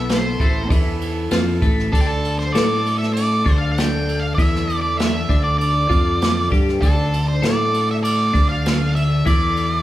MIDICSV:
0, 0, Header, 1, 6, 480
1, 0, Start_track
1, 0, Tempo, 611995
1, 1510, Time_signature, 4, 2, 24, 8
1, 7704, End_track
2, 0, Start_track
2, 0, Title_t, "Lead electric guitar"
2, 0, Program_c, 0, 29
2, 0, Note_on_c, 0, 76, 92
2, 77, Note_on_c, 0, 72, 73
2, 98, Note_off_c, 0, 76, 0
2, 522, Note_off_c, 0, 72, 0
2, 1511, Note_on_c, 0, 69, 85
2, 1566, Note_off_c, 0, 69, 0
2, 1573, Note_on_c, 0, 67, 69
2, 1623, Note_off_c, 0, 67, 0
2, 1623, Note_on_c, 0, 69, 86
2, 1871, Note_off_c, 0, 69, 0
2, 1874, Note_on_c, 0, 72, 71
2, 1979, Note_on_c, 0, 74, 89
2, 1996, Note_off_c, 0, 72, 0
2, 2336, Note_off_c, 0, 74, 0
2, 2339, Note_on_c, 0, 76, 84
2, 2456, Note_off_c, 0, 76, 0
2, 2459, Note_on_c, 0, 74, 94
2, 2806, Note_off_c, 0, 74, 0
2, 2809, Note_on_c, 0, 77, 93
2, 2915, Note_on_c, 0, 79, 95
2, 2943, Note_off_c, 0, 77, 0
2, 3290, Note_on_c, 0, 77, 88
2, 3303, Note_off_c, 0, 79, 0
2, 3406, Note_off_c, 0, 77, 0
2, 3409, Note_on_c, 0, 76, 94
2, 3773, Note_off_c, 0, 76, 0
2, 3776, Note_on_c, 0, 74, 72
2, 3900, Note_off_c, 0, 74, 0
2, 3900, Note_on_c, 0, 76, 94
2, 4261, Note_off_c, 0, 76, 0
2, 4264, Note_on_c, 0, 74, 86
2, 4370, Note_off_c, 0, 74, 0
2, 4379, Note_on_c, 0, 74, 87
2, 5073, Note_off_c, 0, 74, 0
2, 5346, Note_on_c, 0, 69, 88
2, 5709, Note_off_c, 0, 69, 0
2, 5713, Note_on_c, 0, 72, 79
2, 5834, Note_off_c, 0, 72, 0
2, 5846, Note_on_c, 0, 74, 94
2, 6201, Note_off_c, 0, 74, 0
2, 6204, Note_on_c, 0, 76, 92
2, 6243, Note_off_c, 0, 76, 0
2, 6304, Note_on_c, 0, 74, 95
2, 6656, Note_off_c, 0, 74, 0
2, 6659, Note_on_c, 0, 77, 100
2, 7018, Note_off_c, 0, 77, 0
2, 7021, Note_on_c, 0, 76, 92
2, 7266, Note_off_c, 0, 76, 0
2, 7269, Note_on_c, 0, 74, 91
2, 7704, Note_off_c, 0, 74, 0
2, 7704, End_track
3, 0, Start_track
3, 0, Title_t, "String section"
3, 0, Program_c, 1, 48
3, 0, Note_on_c, 1, 52, 68
3, 0, Note_on_c, 1, 57, 62
3, 0, Note_on_c, 1, 64, 62
3, 0, Note_on_c, 1, 69, 74
3, 1482, Note_off_c, 1, 52, 0
3, 1485, Note_off_c, 1, 64, 0
3, 1513, Note_on_c, 1, 50, 67
3, 1514, Note_on_c, 1, 74, 76
3, 7704, Note_off_c, 1, 50, 0
3, 7704, Note_off_c, 1, 57, 0
3, 7704, Note_off_c, 1, 69, 0
3, 7704, Note_off_c, 1, 74, 0
3, 7704, End_track
4, 0, Start_track
4, 0, Title_t, "Clean electric guitar"
4, 0, Program_c, 2, 27
4, 0, Note_on_c, 2, 47, 76
4, 0, Note_on_c, 2, 59, 99
4, 302, Note_off_c, 2, 47, 0
4, 304, Note_off_c, 2, 59, 0
4, 315, Note_on_c, 2, 45, 88
4, 320, Note_on_c, 2, 57, 87
4, 550, Note_off_c, 2, 45, 0
4, 550, Note_on_c, 2, 52, 83
4, 556, Note_off_c, 2, 57, 0
4, 556, Note_on_c, 2, 64, 93
4, 1023, Note_off_c, 2, 52, 0
4, 1026, Note_off_c, 2, 64, 0
4, 1029, Note_on_c, 2, 53, 86
4, 1031, Note_on_c, 2, 65, 87
4, 1263, Note_off_c, 2, 53, 0
4, 1263, Note_off_c, 2, 65, 0
4, 1267, Note_on_c, 2, 45, 85
4, 1272, Note_on_c, 2, 57, 83
4, 1501, Note_off_c, 2, 45, 0
4, 1504, Note_off_c, 2, 57, 0
4, 1512, Note_on_c, 2, 62, 87
4, 1513, Note_on_c, 2, 50, 82
4, 1984, Note_off_c, 2, 50, 0
4, 1984, Note_off_c, 2, 62, 0
4, 1998, Note_on_c, 2, 57, 86
4, 2000, Note_on_c, 2, 69, 96
4, 2703, Note_on_c, 2, 50, 89
4, 2707, Note_off_c, 2, 57, 0
4, 2708, Note_off_c, 2, 69, 0
4, 2712, Note_on_c, 2, 62, 101
4, 3419, Note_off_c, 2, 50, 0
4, 3424, Note_off_c, 2, 62, 0
4, 3436, Note_on_c, 2, 52, 90
4, 3437, Note_on_c, 2, 64, 88
4, 4145, Note_off_c, 2, 52, 0
4, 4146, Note_off_c, 2, 64, 0
4, 4148, Note_on_c, 2, 50, 87
4, 4156, Note_on_c, 2, 62, 92
4, 4618, Note_off_c, 2, 50, 0
4, 4621, Note_off_c, 2, 62, 0
4, 4621, Note_on_c, 2, 53, 93
4, 4625, Note_on_c, 2, 65, 94
4, 5098, Note_off_c, 2, 53, 0
4, 5100, Note_off_c, 2, 65, 0
4, 5103, Note_on_c, 2, 55, 88
4, 5112, Note_on_c, 2, 67, 100
4, 5339, Note_off_c, 2, 55, 0
4, 5343, Note_off_c, 2, 67, 0
4, 5344, Note_on_c, 2, 50, 85
4, 5351, Note_on_c, 2, 62, 97
4, 5819, Note_off_c, 2, 50, 0
4, 5822, Note_off_c, 2, 62, 0
4, 5822, Note_on_c, 2, 69, 92
4, 5824, Note_on_c, 2, 57, 91
4, 6536, Note_on_c, 2, 50, 97
4, 6537, Note_on_c, 2, 62, 91
4, 6538, Note_off_c, 2, 69, 0
4, 6539, Note_off_c, 2, 57, 0
4, 7254, Note_off_c, 2, 50, 0
4, 7255, Note_off_c, 2, 62, 0
4, 7257, Note_on_c, 2, 52, 83
4, 7263, Note_on_c, 2, 64, 103
4, 7704, Note_off_c, 2, 52, 0
4, 7704, Note_off_c, 2, 64, 0
4, 7704, End_track
5, 0, Start_track
5, 0, Title_t, "Fingered electric bass"
5, 0, Program_c, 3, 33
5, 0, Note_on_c, 3, 35, 91
5, 280, Note_off_c, 3, 35, 0
5, 314, Note_on_c, 3, 33, 83
5, 536, Note_off_c, 3, 33, 0
5, 551, Note_on_c, 3, 40, 89
5, 999, Note_off_c, 3, 40, 0
5, 1036, Note_on_c, 3, 41, 88
5, 1256, Note_off_c, 3, 41, 0
5, 1272, Note_on_c, 3, 33, 86
5, 1494, Note_off_c, 3, 33, 0
5, 1513, Note_on_c, 3, 38, 91
5, 1960, Note_off_c, 3, 38, 0
5, 1996, Note_on_c, 3, 45, 85
5, 2682, Note_off_c, 3, 45, 0
5, 2714, Note_on_c, 3, 38, 86
5, 3400, Note_off_c, 3, 38, 0
5, 3436, Note_on_c, 3, 40, 91
5, 4121, Note_off_c, 3, 40, 0
5, 4151, Note_on_c, 3, 38, 95
5, 4598, Note_off_c, 3, 38, 0
5, 4629, Note_on_c, 3, 41, 91
5, 5078, Note_off_c, 3, 41, 0
5, 5111, Note_on_c, 3, 43, 88
5, 5333, Note_off_c, 3, 43, 0
5, 5352, Note_on_c, 3, 38, 90
5, 5799, Note_off_c, 3, 38, 0
5, 5821, Note_on_c, 3, 45, 90
5, 6513, Note_off_c, 3, 45, 0
5, 6547, Note_on_c, 3, 38, 92
5, 7236, Note_off_c, 3, 38, 0
5, 7270, Note_on_c, 3, 40, 92
5, 7704, Note_off_c, 3, 40, 0
5, 7704, End_track
6, 0, Start_track
6, 0, Title_t, "Drums"
6, 73, Note_on_c, 9, 51, 91
6, 81, Note_on_c, 9, 38, 106
6, 151, Note_off_c, 9, 51, 0
6, 159, Note_off_c, 9, 38, 0
6, 314, Note_on_c, 9, 36, 93
6, 318, Note_on_c, 9, 51, 63
6, 393, Note_off_c, 9, 36, 0
6, 397, Note_off_c, 9, 51, 0
6, 553, Note_on_c, 9, 36, 109
6, 557, Note_on_c, 9, 51, 95
6, 631, Note_off_c, 9, 36, 0
6, 636, Note_off_c, 9, 51, 0
6, 795, Note_on_c, 9, 51, 69
6, 874, Note_off_c, 9, 51, 0
6, 1026, Note_on_c, 9, 51, 94
6, 1034, Note_on_c, 9, 38, 102
6, 1105, Note_off_c, 9, 51, 0
6, 1113, Note_off_c, 9, 38, 0
6, 1271, Note_on_c, 9, 51, 66
6, 1273, Note_on_c, 9, 36, 100
6, 1349, Note_off_c, 9, 51, 0
6, 1351, Note_off_c, 9, 36, 0
6, 1407, Note_on_c, 9, 38, 36
6, 1486, Note_off_c, 9, 38, 0
6, 1516, Note_on_c, 9, 36, 100
6, 1524, Note_on_c, 9, 51, 94
6, 1594, Note_off_c, 9, 36, 0
6, 1603, Note_off_c, 9, 51, 0
6, 1761, Note_on_c, 9, 51, 69
6, 1839, Note_off_c, 9, 51, 0
6, 1888, Note_on_c, 9, 38, 33
6, 1966, Note_off_c, 9, 38, 0
6, 1999, Note_on_c, 9, 51, 96
6, 2007, Note_on_c, 9, 38, 109
6, 2077, Note_off_c, 9, 51, 0
6, 2085, Note_off_c, 9, 38, 0
6, 2245, Note_on_c, 9, 51, 65
6, 2324, Note_off_c, 9, 51, 0
6, 2375, Note_on_c, 9, 38, 33
6, 2454, Note_off_c, 9, 38, 0
6, 2482, Note_on_c, 9, 51, 98
6, 2561, Note_off_c, 9, 51, 0
6, 2716, Note_on_c, 9, 36, 98
6, 2718, Note_on_c, 9, 51, 69
6, 2794, Note_off_c, 9, 36, 0
6, 2797, Note_off_c, 9, 51, 0
6, 2962, Note_on_c, 9, 51, 90
6, 2970, Note_on_c, 9, 38, 110
6, 3040, Note_off_c, 9, 51, 0
6, 3048, Note_off_c, 9, 38, 0
6, 3206, Note_on_c, 9, 51, 63
6, 3284, Note_off_c, 9, 51, 0
6, 3436, Note_on_c, 9, 36, 102
6, 3442, Note_on_c, 9, 51, 87
6, 3515, Note_off_c, 9, 36, 0
6, 3521, Note_off_c, 9, 51, 0
6, 3575, Note_on_c, 9, 38, 34
6, 3654, Note_off_c, 9, 38, 0
6, 3683, Note_on_c, 9, 51, 62
6, 3761, Note_off_c, 9, 51, 0
6, 3917, Note_on_c, 9, 51, 85
6, 3924, Note_on_c, 9, 38, 110
6, 3995, Note_off_c, 9, 51, 0
6, 4003, Note_off_c, 9, 38, 0
6, 4153, Note_on_c, 9, 36, 93
6, 4160, Note_on_c, 9, 51, 64
6, 4232, Note_off_c, 9, 36, 0
6, 4239, Note_off_c, 9, 51, 0
6, 4398, Note_on_c, 9, 51, 89
6, 4477, Note_off_c, 9, 51, 0
6, 4632, Note_on_c, 9, 36, 97
6, 4634, Note_on_c, 9, 51, 65
6, 4711, Note_off_c, 9, 36, 0
6, 4713, Note_off_c, 9, 51, 0
6, 4876, Note_on_c, 9, 51, 97
6, 4883, Note_on_c, 9, 38, 101
6, 4954, Note_off_c, 9, 51, 0
6, 4962, Note_off_c, 9, 38, 0
6, 5113, Note_on_c, 9, 36, 100
6, 5122, Note_on_c, 9, 51, 71
6, 5192, Note_off_c, 9, 36, 0
6, 5200, Note_off_c, 9, 51, 0
6, 5247, Note_on_c, 9, 38, 37
6, 5325, Note_off_c, 9, 38, 0
6, 5351, Note_on_c, 9, 36, 103
6, 5354, Note_on_c, 9, 51, 93
6, 5429, Note_off_c, 9, 36, 0
6, 5432, Note_off_c, 9, 51, 0
6, 5596, Note_on_c, 9, 51, 72
6, 5674, Note_off_c, 9, 51, 0
6, 5828, Note_on_c, 9, 51, 92
6, 5836, Note_on_c, 9, 38, 109
6, 5906, Note_off_c, 9, 51, 0
6, 5914, Note_off_c, 9, 38, 0
6, 6072, Note_on_c, 9, 51, 69
6, 6151, Note_off_c, 9, 51, 0
6, 6311, Note_on_c, 9, 51, 106
6, 6389, Note_off_c, 9, 51, 0
6, 6547, Note_on_c, 9, 51, 66
6, 6549, Note_on_c, 9, 36, 99
6, 6626, Note_off_c, 9, 51, 0
6, 6627, Note_off_c, 9, 36, 0
6, 6790, Note_on_c, 9, 51, 91
6, 6798, Note_on_c, 9, 38, 104
6, 6868, Note_off_c, 9, 51, 0
6, 6876, Note_off_c, 9, 38, 0
6, 7027, Note_on_c, 9, 51, 66
6, 7105, Note_off_c, 9, 51, 0
6, 7266, Note_on_c, 9, 51, 96
6, 7267, Note_on_c, 9, 36, 104
6, 7345, Note_off_c, 9, 51, 0
6, 7346, Note_off_c, 9, 36, 0
6, 7505, Note_on_c, 9, 51, 66
6, 7584, Note_off_c, 9, 51, 0
6, 7704, End_track
0, 0, End_of_file